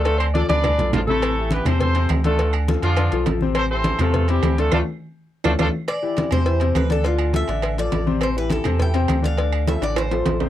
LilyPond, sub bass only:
\new Staff \with { instrumentName = "Sub bass" } { \clef bass \time 4/4 \key d \dorian \tempo 4 = 206 d,4. d,4 b,,8 a,,4~ | a,,4. e,4. d,4~ | d,4. f,4 b,,8 a,,4~ | a,,4. e,4. d,4 |
d,8 r2 d,8 d,8 r8 | r4. e,4. d,4~ | d,4. a,,4. a,,4~ | a,,4. e,4. d,4~ |
d,4. a,,4. a,,4 | }